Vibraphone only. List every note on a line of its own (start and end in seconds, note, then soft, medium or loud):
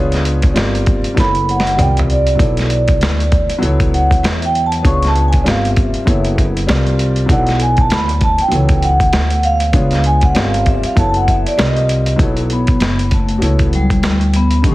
1.20 1.50 B5 loud
1.51 1.81 F#5 medium
1.81 1.94 G5 loud
2.11 3.59 D5 medium
3.94 4.25 F#5 medium
4.25 4.45 E5 medium
4.45 4.65 G5 medium
4.66 4.86 A5 medium
4.86 5.06 C#6 loud
5.07 5.16 A5 loud
5.28 5.37 G#5 medium
5.48 5.68 F5 medium
5.69 6.25 E5 medium
7.32 7.59 F#5 medium
7.62 7.78 G#5 medium
7.80 7.91 A5 medium
7.93 8.06 B5 loud
8.24 8.41 A5 medium
8.42 8.85 G5 loud
8.84 9.46 F#5 medium
9.45 10.01 F5 loud
10.06 10.24 G#5 medium
10.24 10.36 F#5 medium
10.37 10.65 F5 medium
10.67 10.85 E5 medium
10.86 10.97 F5 medium
10.99 11.14 A5 loud
11.16 11.22 F#5 medium
11.29 11.37 E5 medium
11.47 11.52 D5 medium
12.53 12.82 B3 medium
12.83 13.10 B3 medium
13.14 13.69 A3 medium
13.69 13.73 F#3 medium
13.75 14.37 G3 medium
14.37 14.64 B3 medium
14.67 14.75 C#4 loud